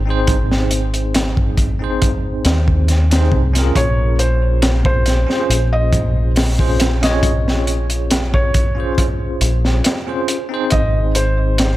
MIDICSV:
0, 0, Header, 1, 5, 480
1, 0, Start_track
1, 0, Key_signature, -5, "minor"
1, 0, Tempo, 869565
1, 153, Time_signature, 4, 2, 24, 8
1, 6496, End_track
2, 0, Start_track
2, 0, Title_t, "Felt piano"
2, 0, Program_c, 0, 0
2, 2078, Note_on_c, 0, 73, 92
2, 2292, Note_off_c, 0, 73, 0
2, 2314, Note_on_c, 0, 72, 80
2, 2641, Note_off_c, 0, 72, 0
2, 2681, Note_on_c, 0, 72, 88
2, 3109, Note_off_c, 0, 72, 0
2, 3161, Note_on_c, 0, 75, 89
2, 3480, Note_off_c, 0, 75, 0
2, 3879, Note_on_c, 0, 75, 87
2, 4199, Note_off_c, 0, 75, 0
2, 4602, Note_on_c, 0, 73, 91
2, 4920, Note_off_c, 0, 73, 0
2, 5917, Note_on_c, 0, 75, 96
2, 6132, Note_off_c, 0, 75, 0
2, 6160, Note_on_c, 0, 72, 90
2, 6484, Note_off_c, 0, 72, 0
2, 6496, End_track
3, 0, Start_track
3, 0, Title_t, "Tine electric piano"
3, 0, Program_c, 1, 4
3, 31, Note_on_c, 1, 60, 77
3, 40, Note_on_c, 1, 63, 74
3, 49, Note_on_c, 1, 68, 75
3, 57, Note_on_c, 1, 72, 97
3, 964, Note_off_c, 1, 60, 0
3, 969, Note_off_c, 1, 63, 0
3, 974, Note_off_c, 1, 68, 0
3, 978, Note_off_c, 1, 72, 0
3, 989, Note_on_c, 1, 60, 72
3, 997, Note_on_c, 1, 63, 67
3, 1005, Note_on_c, 1, 68, 69
3, 1015, Note_on_c, 1, 72, 87
3, 1684, Note_off_c, 1, 60, 0
3, 1688, Note_off_c, 1, 63, 0
3, 1692, Note_off_c, 1, 68, 0
3, 1696, Note_off_c, 1, 72, 0
3, 1716, Note_on_c, 1, 60, 78
3, 1720, Note_on_c, 1, 63, 69
3, 1724, Note_on_c, 1, 68, 71
3, 1728, Note_on_c, 1, 72, 81
3, 1927, Note_off_c, 1, 60, 0
3, 1929, Note_off_c, 1, 63, 0
3, 1931, Note_off_c, 1, 68, 0
3, 1933, Note_off_c, 1, 72, 0
3, 1951, Note_on_c, 1, 61, 82
3, 1959, Note_on_c, 1, 65, 77
3, 1968, Note_on_c, 1, 68, 76
3, 1976, Note_on_c, 1, 70, 84
3, 2885, Note_off_c, 1, 61, 0
3, 2888, Note_off_c, 1, 65, 0
3, 2893, Note_off_c, 1, 68, 0
3, 2897, Note_off_c, 1, 70, 0
3, 2908, Note_on_c, 1, 61, 78
3, 2916, Note_on_c, 1, 65, 70
3, 2925, Note_on_c, 1, 68, 70
3, 2933, Note_on_c, 1, 72, 84
3, 3603, Note_off_c, 1, 61, 0
3, 3607, Note_off_c, 1, 65, 0
3, 3612, Note_off_c, 1, 68, 0
3, 3615, Note_off_c, 1, 72, 0
3, 3636, Note_on_c, 1, 61, 79
3, 3638, Note_on_c, 1, 65, 71
3, 3643, Note_on_c, 1, 68, 70
3, 3647, Note_on_c, 1, 72, 90
3, 3847, Note_off_c, 1, 61, 0
3, 3848, Note_off_c, 1, 65, 0
3, 3851, Note_off_c, 1, 68, 0
3, 3853, Note_off_c, 1, 72, 0
3, 3868, Note_on_c, 1, 61, 82
3, 3879, Note_on_c, 1, 65, 73
3, 3888, Note_on_c, 1, 68, 79
3, 3894, Note_on_c, 1, 73, 97
3, 4803, Note_off_c, 1, 61, 0
3, 4809, Note_off_c, 1, 65, 0
3, 4813, Note_off_c, 1, 68, 0
3, 4816, Note_off_c, 1, 73, 0
3, 4829, Note_on_c, 1, 61, 72
3, 4839, Note_on_c, 1, 65, 71
3, 4848, Note_on_c, 1, 68, 67
3, 4857, Note_on_c, 1, 72, 83
3, 5524, Note_off_c, 1, 61, 0
3, 5528, Note_off_c, 1, 65, 0
3, 5533, Note_off_c, 1, 68, 0
3, 5537, Note_off_c, 1, 72, 0
3, 5557, Note_on_c, 1, 61, 75
3, 5561, Note_on_c, 1, 65, 72
3, 5565, Note_on_c, 1, 68, 68
3, 5570, Note_on_c, 1, 72, 87
3, 5768, Note_off_c, 1, 61, 0
3, 5769, Note_off_c, 1, 65, 0
3, 5772, Note_off_c, 1, 68, 0
3, 5774, Note_off_c, 1, 72, 0
3, 5790, Note_on_c, 1, 60, 85
3, 5799, Note_on_c, 1, 63, 78
3, 5806, Note_on_c, 1, 68, 73
3, 5816, Note_on_c, 1, 72, 96
3, 6496, Note_off_c, 1, 60, 0
3, 6496, Note_off_c, 1, 63, 0
3, 6496, Note_off_c, 1, 68, 0
3, 6496, Note_off_c, 1, 72, 0
3, 6496, End_track
4, 0, Start_track
4, 0, Title_t, "Fingered electric bass"
4, 0, Program_c, 2, 33
4, 0, Note_on_c, 2, 32, 74
4, 1331, Note_off_c, 2, 32, 0
4, 1353, Note_on_c, 2, 39, 97
4, 1811, Note_off_c, 2, 39, 0
4, 1831, Note_on_c, 2, 36, 74
4, 2045, Note_off_c, 2, 36, 0
4, 2073, Note_on_c, 2, 34, 91
4, 2894, Note_off_c, 2, 34, 0
4, 3033, Note_on_c, 2, 34, 70
4, 5171, Note_off_c, 2, 34, 0
4, 5196, Note_on_c, 2, 34, 77
4, 5407, Note_off_c, 2, 34, 0
4, 5919, Note_on_c, 2, 32, 99
4, 6496, Note_off_c, 2, 32, 0
4, 6496, End_track
5, 0, Start_track
5, 0, Title_t, "Drums"
5, 151, Note_on_c, 9, 42, 84
5, 154, Note_on_c, 9, 36, 109
5, 207, Note_off_c, 9, 42, 0
5, 209, Note_off_c, 9, 36, 0
5, 284, Note_on_c, 9, 38, 57
5, 340, Note_off_c, 9, 38, 0
5, 390, Note_on_c, 9, 42, 66
5, 446, Note_off_c, 9, 42, 0
5, 517, Note_on_c, 9, 42, 36
5, 573, Note_off_c, 9, 42, 0
5, 632, Note_on_c, 9, 42, 84
5, 638, Note_on_c, 9, 38, 116
5, 687, Note_off_c, 9, 42, 0
5, 694, Note_off_c, 9, 38, 0
5, 757, Note_on_c, 9, 36, 77
5, 813, Note_off_c, 9, 36, 0
5, 869, Note_on_c, 9, 36, 90
5, 870, Note_on_c, 9, 42, 63
5, 924, Note_off_c, 9, 36, 0
5, 925, Note_off_c, 9, 42, 0
5, 1113, Note_on_c, 9, 42, 81
5, 1116, Note_on_c, 9, 36, 92
5, 1168, Note_off_c, 9, 42, 0
5, 1171, Note_off_c, 9, 36, 0
5, 1351, Note_on_c, 9, 42, 73
5, 1359, Note_on_c, 9, 38, 93
5, 1406, Note_off_c, 9, 42, 0
5, 1415, Note_off_c, 9, 38, 0
5, 1478, Note_on_c, 9, 36, 68
5, 1533, Note_off_c, 9, 36, 0
5, 1592, Note_on_c, 9, 42, 52
5, 1599, Note_on_c, 9, 38, 36
5, 1647, Note_off_c, 9, 42, 0
5, 1654, Note_off_c, 9, 38, 0
5, 1719, Note_on_c, 9, 42, 68
5, 1725, Note_on_c, 9, 38, 89
5, 1774, Note_off_c, 9, 42, 0
5, 1780, Note_off_c, 9, 38, 0
5, 1830, Note_on_c, 9, 36, 78
5, 1886, Note_off_c, 9, 36, 0
5, 1961, Note_on_c, 9, 42, 57
5, 1968, Note_on_c, 9, 38, 38
5, 2016, Note_off_c, 9, 42, 0
5, 2023, Note_off_c, 9, 38, 0
5, 2073, Note_on_c, 9, 36, 106
5, 2074, Note_on_c, 9, 42, 80
5, 2128, Note_off_c, 9, 36, 0
5, 2129, Note_off_c, 9, 42, 0
5, 2314, Note_on_c, 9, 42, 60
5, 2369, Note_off_c, 9, 42, 0
5, 2552, Note_on_c, 9, 42, 82
5, 2554, Note_on_c, 9, 38, 114
5, 2607, Note_off_c, 9, 42, 0
5, 2609, Note_off_c, 9, 38, 0
5, 2677, Note_on_c, 9, 36, 98
5, 2732, Note_off_c, 9, 36, 0
5, 2792, Note_on_c, 9, 42, 71
5, 2802, Note_on_c, 9, 38, 40
5, 2847, Note_off_c, 9, 42, 0
5, 2857, Note_off_c, 9, 38, 0
5, 2925, Note_on_c, 9, 38, 37
5, 2980, Note_off_c, 9, 38, 0
5, 3039, Note_on_c, 9, 42, 83
5, 3094, Note_off_c, 9, 42, 0
5, 3271, Note_on_c, 9, 36, 100
5, 3272, Note_on_c, 9, 42, 58
5, 3326, Note_off_c, 9, 36, 0
5, 3327, Note_off_c, 9, 42, 0
5, 3511, Note_on_c, 9, 46, 68
5, 3518, Note_on_c, 9, 38, 100
5, 3566, Note_off_c, 9, 46, 0
5, 3573, Note_off_c, 9, 38, 0
5, 3638, Note_on_c, 9, 36, 86
5, 3694, Note_off_c, 9, 36, 0
5, 3752, Note_on_c, 9, 42, 81
5, 3761, Note_on_c, 9, 38, 104
5, 3807, Note_off_c, 9, 42, 0
5, 3816, Note_off_c, 9, 38, 0
5, 3880, Note_on_c, 9, 42, 75
5, 3885, Note_on_c, 9, 38, 99
5, 3935, Note_off_c, 9, 42, 0
5, 3940, Note_off_c, 9, 38, 0
5, 3990, Note_on_c, 9, 36, 109
5, 3992, Note_on_c, 9, 42, 85
5, 4045, Note_off_c, 9, 36, 0
5, 4047, Note_off_c, 9, 42, 0
5, 4129, Note_on_c, 9, 38, 53
5, 4184, Note_off_c, 9, 38, 0
5, 4236, Note_on_c, 9, 42, 56
5, 4291, Note_off_c, 9, 42, 0
5, 4360, Note_on_c, 9, 42, 44
5, 4415, Note_off_c, 9, 42, 0
5, 4474, Note_on_c, 9, 42, 89
5, 4479, Note_on_c, 9, 38, 124
5, 4530, Note_off_c, 9, 42, 0
5, 4534, Note_off_c, 9, 38, 0
5, 4602, Note_on_c, 9, 36, 83
5, 4657, Note_off_c, 9, 36, 0
5, 4715, Note_on_c, 9, 42, 69
5, 4717, Note_on_c, 9, 36, 93
5, 4771, Note_off_c, 9, 42, 0
5, 4772, Note_off_c, 9, 36, 0
5, 4956, Note_on_c, 9, 36, 96
5, 4957, Note_on_c, 9, 42, 83
5, 5012, Note_off_c, 9, 36, 0
5, 5012, Note_off_c, 9, 42, 0
5, 5194, Note_on_c, 9, 42, 61
5, 5250, Note_off_c, 9, 42, 0
5, 5325, Note_on_c, 9, 38, 42
5, 5380, Note_off_c, 9, 38, 0
5, 5434, Note_on_c, 9, 42, 83
5, 5444, Note_on_c, 9, 38, 111
5, 5489, Note_off_c, 9, 42, 0
5, 5500, Note_off_c, 9, 38, 0
5, 5675, Note_on_c, 9, 42, 70
5, 5731, Note_off_c, 9, 42, 0
5, 5909, Note_on_c, 9, 42, 72
5, 5918, Note_on_c, 9, 36, 92
5, 5964, Note_off_c, 9, 42, 0
5, 5974, Note_off_c, 9, 36, 0
5, 6155, Note_on_c, 9, 42, 64
5, 6210, Note_off_c, 9, 42, 0
5, 6394, Note_on_c, 9, 42, 78
5, 6401, Note_on_c, 9, 38, 112
5, 6449, Note_off_c, 9, 42, 0
5, 6456, Note_off_c, 9, 38, 0
5, 6496, End_track
0, 0, End_of_file